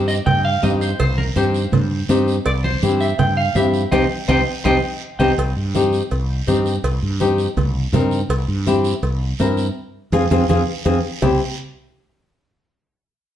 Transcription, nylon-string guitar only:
Already playing: C4 D#4 G4
0.62 C4 D#4 G4
1.36 C4 D#4 G4
2.09 C4 D#4 G4
2.83 C4 E4 G4
3.55 C4 E4 G4
3.92 C4 D#4 G4
4.28 C4 D#4 G4
4.65 C4 D#4 G4
5.20 C4 D#4 G4
5.75 C4 D#4 G4
6.47 C4 D#4 G4
7.20 C4 D#4 G4
7.93 C4 D#4 A#4
8.67 C4 E4 G4
9.40 C4 E4 A#4
10.13 C4 F4 G#4
10.31 C4 F4 G#4
10.49 C4 F4 G#4
10.85 C4 F4 G#4
11.22 C4 E4 G4

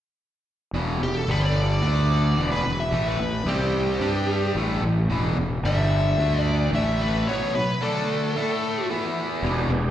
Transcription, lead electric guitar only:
1.03 G4
1.17 A4
1.31 B4
1.45 D5
2.52 B4
2.80 E5
3.08 B4
3.49 G4
5.65 E5
6.40 D5
6.75 E5
7.01 B4
7.28 C#5
7.55 B4
7.82 A4

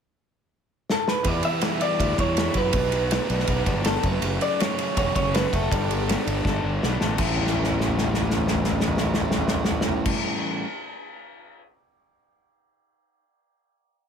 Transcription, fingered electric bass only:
1.25 E2
1.99 D2
2.18 E2
2.55 F#2
2.74 B1
3.30 B1
3.48 B1
3.66 G1
4.04 F#1
4.22 F#1
4.97 E1
5.16 F#1
5.53 F#1
5.71 G1
6.27 G1
6.45 G1
6.64 G1
6.83 B1
7.02 A1
7.19 A1

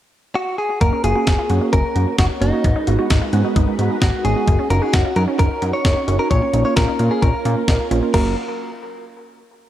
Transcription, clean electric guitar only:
0.35 F#4
0.58 G#4
0.81 A#4
1.04 G#4
1.73 A#4
2.19 F#4
2.42 D#4
4.02 F#4
4.25 G#4
4.70 A#4
4.82 G#4
4.93 F#4
5.16 A#4
5.39 A#4
5.73 C#5
6.19 A#4
6.31 C#5
6.65 C#5
6.76 A#4
7.11 G#4
7.22 A#4
8.14 A#4

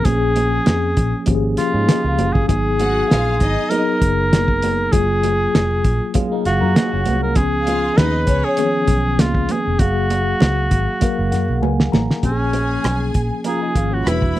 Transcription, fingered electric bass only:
0.06 A#1
0.67 F2
0.98 A#1
1.28 G#1
1.74 G#2
2.04 C#2
2.19 F#1
2.36 G1
2.49 G#1
3.12 A#1
3.41 G#1
4.02 F#1
4.93 F#1
5.55 F1
5.85 A#1
6.46 F#1
6.62 F#2
6.93 F#1
7.07 C2
7.37 C#2
7.98 D#2
8.28 C#2
8.88 B1
9.20 C#2
9.67 F1
9.80 F#1
10.42 C#2
10.72 G#1
11.19 F#1
11.33 F#2
11.49 B1
11.63 C#2
11.93 A1
12.24 A#1
12.85 B1
13.15 A#1
13.76 G#1
14.07 E1

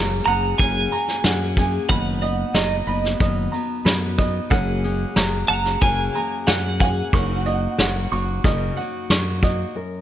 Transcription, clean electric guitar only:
0.26 A#5
0.58 G#5
1.89 F#5
2.55 D#5
5.48 A#5
5.82 G#5
6.47 F#5
6.81 F#5

